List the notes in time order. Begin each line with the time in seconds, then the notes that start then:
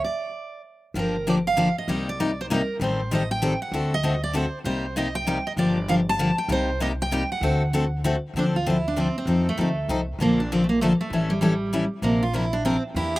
0.04 D5
0.94 G1 D3 F3 A#3 D4 G4
0.99 A#4
1.27 D3 F3 A#3 D4 G4 D5
1.47 F5
1.57 D3 F3 A#3 D4 G4
1.78 D#5
1.88 C2 C3 G3 A#3 D#4 G4
2.09 D5
2.20 C3 G3 A#3 D#4 G4
2.41 C5
2.50 C3 G3 A#3 D#4 G4 A#4
2.80 A1 D#3 G3 C4 G4 A4
2.84 C5
3.11 D#3 G3 C4 G4 A4 D#5
3.31 G5
3.42 D#3 G3 C4 G4 A4
3.62 F#5
3.72 D2 D3 A3 C4 F#4 A4
3.94 D#5
4.03 D3 A3 C4 F#4 A4
4.24 D5
4.33 D3 A3 C4 F#4 A4 C5
4.64 C2 C3 G3 A#3 D#4 G4 C5
4.96 C3 G3 A#3 D#4 G4 D#5
5.15 G5
5.27 C3 G3 A#3 D#4 G4
5.47 D#5
5.57 G1 D3 F3 A#3 D4 G4 D5
5.88 D3 F3 A#3 D4 G4 F5
6.09 A5
6.19 D3 F3 A#3 D4 G4
6.38 G5
6.48 C2 C3 G3 A#3 D#4 G4 C5
6.80 C3 G3 A#3 D#4 G4 D#5
7.02 G5
7.11 C3 G3 A#3 D#4 G4
7.32 F#5
7.41 D2 D3 A3 C4 F#4 A4
7.73 D3 A3 C4 F#4 A4
8.04 D3 A3 C4 F#4 A4
8.34 D2 D3 F3 C4 D4 A4
8.39 D4
8.56 F4
8.66 D3 F3 C4 D4 E4 A4
8.88 D4
8.96 D3 F3 C4 D4 A4
9.18 C4
9.26 F2 F3 C4 D#4 A4
9.49 A3
9.57 D2 F3 A3 C4 D#4 A4
9.88 C2 F3 C4 D#4 A4
10.19 A#1 D3 F3 A#3 D4 A4
10.40 D4
10.52 D3 F3 A#3 C4 D4 A4
10.64 A3
10.69 A#3
10.81 D3 F3 A3 A#3 D4 A4
11.01 A3
11.10 A1 E3 G3 C#4 E4 A4
11.30 G3
11.41 E3 G3 C#4 E4 A4
11.73 E3 G3 C#4 E4 A4
12.02 A#1 C3 F3 A#3 D4 A#4
12.23 F4
12.33 C3 F3 A#3 D4 E4 A#4
12.53 D4
12.65 C3 F3 A#3 C4 D4 A#4
12.95 E2 E3 A#3 D4 E4 G4
13.16 G4